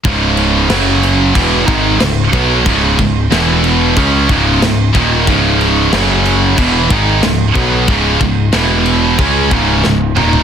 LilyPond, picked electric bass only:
\new Staff \with { instrumentName = "Picked electric bass" } { \clef bass \time 4/4 \key cis \minor \tempo 4 = 92 cis,,4 fis,,4 e,,8 gis,,8 cis,,8 b,,8 | cis,,8 cis,,8 e,,4 cis,8 cis,,8 cis,,8 dis,,8 | cis,,4 fis,,4 e,,8 gis,,8 cis,,8 b,,8 | cis,,8 cis,,8 e,,4 cis,8 cis,,8 cis,,8 dis,,8 | }